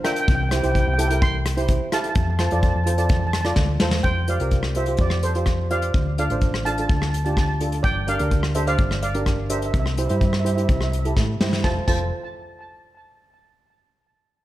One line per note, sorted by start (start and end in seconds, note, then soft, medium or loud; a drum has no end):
0.04 0.28 D4 medium
0.04 0.28 F4 medium
0.04 0.28 A#4 loud
0.04 0.11 E5 medium
0.04 0.11 G5 medium
0.04 cross-stick medium
0.04 closed hi-hat medium
0.12 0.19 G5 medium
0.12 closed hi-hat medium
0.20 0.27 G5 medium
0.28 0.60 C2 loud
0.28 0.34 G5 medium
0.28 kick loud
0.28 closed hi-hat medium
0.35 0.42 G5 medium
0.43 0.48 G5 medium
0.49 0.59 E4 medium
0.49 0.59 G4 medium
0.49 0.59 C5 medium
0.49 0.57 G5 medium
0.49 cross-stick medium
0.49 closed hi-hat medium
0.58 0.65 G5 medium
0.63 0.85 C2 medium
0.63 0.84 E4 medium
0.63 0.84 G4 medium
0.63 0.85 C5 medium
0.63 0.70 G5 medium
0.63 closed hi-hat medium
0.72 0.78 G5 medium
0.72 kick medium
0.72 closed hi-hat medium
0.79 0.87 G5 medium
0.87 1.77 C2 medium
0.87 0.92 G5 medium
0.94 0.99 G5 medium
0.98 1.06 E4 medium
0.98 1.06 G4 medium
0.98 1.06 A4 medium
0.98 1.07 G5 medium
0.98 closed hi-hat loud
1.08 1.39 E4 medium
1.08 1.39 G4 medium
1.08 1.39 A#4 medium
1.08 1.16 G5 medium
1.08 closed hi-hat medium
1.22 1.89 G5 medium
1.22 1.95 C6 loud
1.22 kick loud
1.22 closed hi-hat medium
1.46 cross-stick loud
1.46 closed hi-hat loud
1.57 1.79 E4 medium
1.57 1.79 G4 medium
1.57 1.79 C5 loud
1.57 closed hi-hat medium
1.68 kick medium
1.68 closed hi-hat medium
1.92 2.16 E4 medium
1.92 2.16 G4 medium
1.92 2.16 A4 medium
1.92 1.99 F5 medium
1.92 1.99 A5 medium
1.92 cross-stick medium
1.92 closed hi-hat medium
2.00 2.07 A5 medium
2.00 closed hi-hat medium
2.09 2.15 A5 medium
2.15 2.48 F2 loud
2.15 2.22 A5 medium
2.15 kick loud
2.15 closed hi-hat medium
2.23 2.29 A5 medium
2.30 2.37 A5 medium
2.39 2.47 F4 medium
2.39 2.47 A4 medium
2.39 2.47 C5 medium
2.39 2.45 A5 medium
2.39 cross-stick medium
2.39 closed hi-hat medium
2.46 2.52 A5 medium
2.51 2.73 F2 medium
2.51 2.73 F4 medium
2.51 2.73 A4 medium
2.51 2.73 D5 medium
2.51 2.60 A5 medium
2.51 closed hi-hat medium
2.62 2.67 A5 medium
2.62 kick medium
2.62 closed hi-hat medium
2.69 2.75 A5 medium
2.75 3.54 F2 medium
2.75 2.82 A5 medium
2.84 2.94 F4 medium
2.84 2.94 A4 medium
2.84 2.94 C5 medium
2.84 2.89 A5 medium
2.84 closed hi-hat medium
2.90 2.97 A5 medium
2.98 3.27 F4 medium
2.98 3.27 A4 medium
2.98 3.27 D5 medium
2.98 3.04 A5 medium
2.98 closed hi-hat medium
3.05 3.11 A5 medium
3.09 3.18 A5 medium
3.09 kick loud
3.09 closed hi-hat medium
3.20 3.25 A5 medium
3.27 3.33 A5 medium
3.33 3.40 A5 medium
3.33 cross-stick medium
3.33 closed hi-hat medium
3.41 3.48 A5 medium
3.41 cross-stick medium
3.41 closed hi-hat medium
3.45 3.67 F4 medium
3.45 3.67 A4 medium
3.45 3.67 D5 loud
3.56 3.79 D2 medium
3.56 kick loud
3.56 snare medium
3.80 4.03 E2 loud
3.80 4.05 F4 medium
3.80 4.05 A4 medium
3.80 4.05 C5 loud
3.80 snare loud
3.91 snare loud
4.03 4.37 F2 medium
4.03 4.27 C5 medium
4.03 4.29 G5 loud
4.03 kick loud
4.03 closed hi-hat medium
4.28 4.36 F4 medium
4.28 4.36 G4 medium
4.28 4.36 C5 medium
4.28 4.73 D5 medium
4.28 4.78 F5 medium
4.28 closed hi-hat medium
4.40 4.95 C2 medium
4.40 4.62 F4 medium
4.40 4.62 G4 medium
4.40 4.62 A#4 medium
4.40 closed hi-hat medium
4.51 kick medium
4.51 closed hi-hat medium
4.63 cross-stick medium
4.75 4.83 F4 medium
4.75 4.83 G4 medium
4.75 4.83 C5 medium
4.75 4.99 C5 medium
4.75 5.01 E5 medium
4.75 closed hi-hat medium
4.86 5.16 F4 medium
4.86 5.16 G4 medium
4.86 5.16 C5 medium
4.86 closed hi-hat medium
4.97 5.90 F2 loud
4.97 5.25 D5 medium
4.97 kick loud
4.97 closed hi-hat medium
5.02 5.23 G4 medium
5.10 cross-stick medium
5.23 5.68 A4 medium
5.23 5.72 C5 medium
5.23 closed hi-hat medium
5.35 5.57 F4 medium
5.35 5.57 G4 medium
5.35 5.57 C5 medium
5.35 closed hi-hat medium
5.46 kick medium
5.46 cross-stick medium
5.46 closed hi-hat medium
5.71 5.95 F4 medium
5.71 5.95 G4 medium
5.71 5.95 C5 medium
5.71 6.15 D5 medium
5.71 6.18 F5 medium
5.71 closed hi-hat medium
5.82 closed hi-hat medium
5.94 6.27 D2 medium
5.94 kick loud
5.94 closed hi-hat medium
6.18 6.26 D4 medium
6.18 6.26 F4 medium
6.18 6.26 A4 medium
6.18 6.63 D5 medium
6.18 6.64 F5 medium
6.18 closed hi-hat medium
6.30 6.85 A1 medium
6.30 6.52 D4 medium
6.30 6.52 F4 medium
6.30 6.52 C5 medium
6.30 closed hi-hat medium
6.41 kick medium
6.41 closed hi-hat medium
6.54 cross-stick medium
6.65 6.73 D4 medium
6.65 6.73 F4 medium
6.65 6.73 A4 medium
6.65 6.72 F5 medium
6.65 6.71 A5 loud
6.65 closed hi-hat medium
6.78 7.06 D4 medium
6.78 7.07 F4 medium
6.78 7.07 A4 medium
6.78 6.87 A5 medium
6.78 closed hi-hat medium
6.88 7.80 D2 loud
6.88 6.95 A5 medium
6.88 kick loud
6.88 closed hi-hat medium
6.97 7.02 A5 medium
7.02 7.09 A5 medium
7.02 cross-stick medium
7.10 7.16 A5 medium
7.10 closed hi-hat medium
7.17 7.24 A5 medium
7.25 7.47 D4 medium
7.25 7.47 F4 medium
7.25 7.47 G4 medium
7.25 7.32 A5 medium
7.25 closed hi-hat medium
7.33 7.39 A5 medium
7.37 7.47 A5 medium
7.37 kick medium
7.37 cross-stick medium
7.37 closed hi-hat medium
7.48 7.55 A5 medium
7.61 7.85 D4 medium
7.61 7.85 F4 medium
7.61 7.85 A4 medium
7.61 closed hi-hat medium
7.72 closed hi-hat medium
7.83 8.16 G1 medium
7.83 8.06 D5 medium
7.83 8.09 G5 loud
7.83 kick loud
7.83 closed hi-hat medium
8.07 8.15 D4 medium
8.07 8.15 G4 medium
8.07 8.15 A#4 medium
8.07 8.52 D5 medium
8.07 8.57 F5 medium
8.07 closed hi-hat medium
8.19 8.75 D2 medium
8.19 8.41 D4 medium
8.19 8.41 G4 medium
8.19 8.41 A#4 medium
8.19 closed hi-hat medium
8.31 kick medium
8.31 closed hi-hat medium
8.43 cross-stick medium
8.55 8.63 D4 medium
8.55 8.63 G4 medium
8.55 8.63 A4 medium
8.55 8.66 C5 medium
8.55 8.66 E5 medium
8.55 closed hi-hat medium
8.67 8.96 D4 medium
8.67 8.96 G4 medium
8.67 8.96 C5 medium
8.67 9.00 D5 medium
8.67 9.01 F5 medium
8.67 closed hi-hat medium
8.78 9.70 G1 loud
8.78 kick loud
8.78 closed hi-hat medium
8.91 cross-stick medium
9.02 9.47 D5 medium
9.02 9.52 F5 medium
9.02 closed hi-hat medium
9.14 9.36 D4 medium
9.14 9.36 G4 medium
9.14 9.36 A#4 medium
9.14 closed hi-hat medium
9.26 kick medium
9.26 cross-stick medium
9.26 closed hi-hat medium
9.50 9.74 D4 medium
9.50 9.74 G4 medium
9.50 9.74 A#4 medium
9.50 9.57 C5 medium
9.50 9.57 E5 medium
9.50 closed hi-hat medium
9.59 9.65 E5 medium
9.59 closed hi-hat medium
9.66 9.70 E5 medium
9.71 10.06 C2 loud
9.71 9.78 E5 medium
9.71 kick loud
9.71 closed hi-hat medium
9.80 9.85 E5 medium
9.86 9.93 E5 soft
9.86 cross-stick medium
9.94 10.00 E5 medium
9.94 closed hi-hat medium
9.98 10.05 E4 medium
9.98 10.05 G4 medium
9.98 10.05 C5 medium
9.98 10.07 E5 medium
10.08 10.65 G2 medium
10.08 10.31 E4 medium
10.08 10.31 G4 medium
10.08 10.31 C5 medium
10.08 10.15 E5 medium
10.08 closed hi-hat medium
10.16 10.24 E5 medium
10.21 10.31 E5 medium
10.21 kick medium
10.21 closed hi-hat medium
10.33 10.39 E5 soft
10.33 cross-stick medium
10.40 10.47 E5 medium
10.45 10.52 E4 medium
10.45 10.52 G4 medium
10.45 10.52 C5 medium
10.45 10.54 E5 medium
10.45 closed hi-hat medium
10.55 10.86 E4 medium
10.55 10.85 G4 medium
10.55 10.86 C5 medium
10.55 10.61 E5 medium
10.55 closed hi-hat medium
10.62 10.69 E5 medium
10.69 11.13 C2 loud
10.69 10.75 E5 medium
10.69 kick loud
10.69 closed hi-hat medium
10.77 10.82 E5 soft
10.77 cross-stick medium
10.83 10.91 E5 medium
10.92 10.98 E5 medium
10.92 closed hi-hat medium
10.99 11.07 E5 medium
11.05 11.26 E4 medium
11.05 11.26 G4 medium
11.05 11.26 A4 medium
11.05 closed hi-hat medium
11.17 11.38 A2 medium
11.17 kick medium
11.17 snare medium
11.40 11.62 G2 medium
11.40 11.64 E4 medium
11.40 11.64 G4 medium
11.40 11.64 C5 medium
11.40 snare medium
11.53 snare medium
11.64 11.77 F1 medium
11.64 11.78 F4 medium
11.64 11.78 A4 medium
11.64 11.78 C5 medium
11.64 11.77 A5 medium
11.64 kick loud
11.64 snare medium
11.88 12.10 F1 medium
11.88 12.10 F4 medium
11.88 12.10 A4 medium
11.88 12.10 C5 medium
11.88 12.10 A5 medium
11.88 kick loud
11.88 crash medium